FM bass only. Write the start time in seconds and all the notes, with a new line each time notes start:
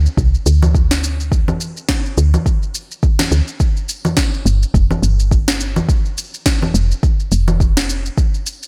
0.17 C2
0.46 D2
2.18 D2
3.32 D2
4.46 G1
4.74 F1
5.02 G1
6.74 F1
7.32 F1